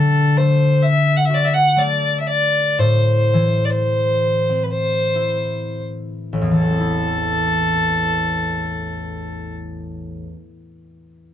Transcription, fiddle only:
Already playing: A4
0.37 C5
0.82 E5
1.16 F#5
1.25 E5
1.34 D5
1.44 E5
1.53 F#5
1.78 D5
2.20 E5
2.27 D5
2.79 C5
3.65 D5
3.70 C5
4.63 B4
4.69 C5
6.54 A4

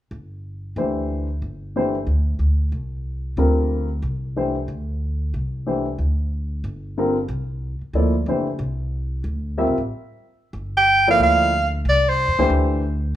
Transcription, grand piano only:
0.77 E3 A3 D4 G4 C5
1.76 E3 A3 D4 G4 C5
3.38 D3 G3 C4 F4 A#4
4.36 E3 A3 D4 G4 C5
5.67 E3 A3 D4 G4 C5
6.98 D3 G3 C4 F4 A#4
7.95 F3 A#3 E4 A4 D5
8.28 E3 A3 D4 G4 C5
9.58 G3 C4 F4 A#4 E5
11.07 F3 A#3 E4 A4 D5
12.39 E3 A3 D4 G4 C5

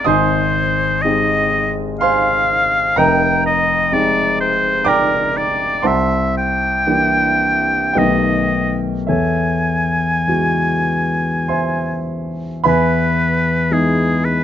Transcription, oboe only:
0.07 C5
1.02 D#5
2.01 F5
2.98 G5
3.46 D#5
3.94 D5
4.41 C5
4.89 A#4
5.38 D5
5.87 E5
6.38 G5
7.98 D#5
9.10 G#5
12.68 B4
13.73 G#4
14.25 B4

